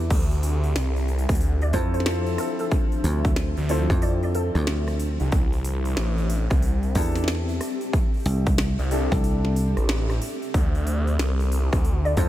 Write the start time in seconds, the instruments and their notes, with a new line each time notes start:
Already playing: ambient pad C4 G4 A4 E5
0.10 detuned saw bass D2, ambient pad D4, kick, open hi-hat, crash
0.31 open hi-hat
0.43 open hi-hat
0.64 open hi-hat
0.76 detuned saw bass C2, snare, open hi-hat
0.81 ambient pad F3 C5
0.96 open hi-hat
1.08 open hi-hat
1.19 open hi-hat
1.29 detuned saw bass D2, kick, cross-stick, open hi-hat
1.35 open hi-hat
1.41 open hi-hat
1.61 synth pluck D5, open hi-hat
1.73 slap bass F2, grand piano C4 E4 F4 A4, synth pluck C5, kick, open hi-hat
1.94 synth pluck C5, open hi-hat
2.00 snare
2.06 grand piano C4 E4 F4 A4, snare, open hi-hat
2.26 open hi-hat
2.38 synth pluck A4, cross-stick, open hi-hat
2.59 synth pluck A4, open hi-hat
2.71 kick, open hi-hat
2.92 open hi-hat
3.04 slap bass D2, open hi-hat
3.25 kick, open hi-hat
3.36 snare, open hi-hat
3.57 detuned saw bass D2, open hi-hat
3.69 grand piano C4 E4 F4 A4, synth pluck C5, open hi-hat
3.90 slap bass F2, kick, cross-stick, open hi-hat
4.02 synth pluck D5, open hi-hat
4.23 synth pluck D5, open hi-hat
4.35 synth pluck A4, open hi-hat
4.55 slap bass D2, cross-stick, open hi-hat
4.67 snare, open hi-hat
4.88 cross-stick, open hi-hat
5.00 open hi-hat
5.20 detuned saw bass C2, open hi-hat
5.32 detuned saw bass C2, ambient pad C4, kick, open hi-hat
5.53 open hi-hat
5.65 open hi-hat
5.70 ambient pad G4
5.85 open hi-hat
5.97 detuned saw bass A1, snare, open hi-hat
6.18 open hi-hat
6.30 open hi-hat
6.50 detuned saw bass C2, kick, cross-stick, open hi-hat
6.58 ambient pad A4
6.62 open hi-hat
6.83 open hi-hat
6.95 slap bass E2, grand piano D4 E4 G4 A4, kick, open hi-hat
6.98 open hi-hat
7.02 open hi-hat
7.05 open hi-hat
7.12 snare, open hi-hat
7.16 open hi-hat
7.24 snare
7.28 snare, open hi-hat
7.35 snare
7.49 open hi-hat
7.61 cross-stick, open hi-hat
7.81 open hi-hat
7.93 kick, open hi-hat
8.14 open hi-hat
8.17 open hi-hat
8.20 open hi-hat
8.23 open hi-hat
8.26 slap bass C2, open hi-hat
8.46 kick, open hi-hat
8.58 snare, open hi-hat
8.79 detuned saw bass C2, open hi-hat
8.91 grand piano D4 E4 G4 A4, open hi-hat
9.12 slap bass C2, kick, cross-stick, open hi-hat
9.24 open hi-hat
9.45 snare
9.56 open hi-hat
9.77 detuned saw bass A1, cross-stick, open hi-hat
9.89 snare, open hi-hat
10.10 cross-stick, open hi-hat
10.22 open hi-hat
10.42 open hi-hat
10.53 detuned saw bass D2, ambient pad D4, kick, open hi-hat
10.75 open hi-hat
10.87 open hi-hat
11.07 open hi-hat
11.18 detuned saw bass C2, ambient pad F4, snare, open hi-hat
11.40 open hi-hat
11.52 open hi-hat
11.73 detuned saw bass D2, kick, cross-stick, open hi-hat
11.79 ambient pad C5
11.85 open hi-hat
12.05 synth pluck D5, open hi-hat
12.17 slap bass F2, grand piano C4 E4 F4 A4, synth pluck C5, kick, open hi-hat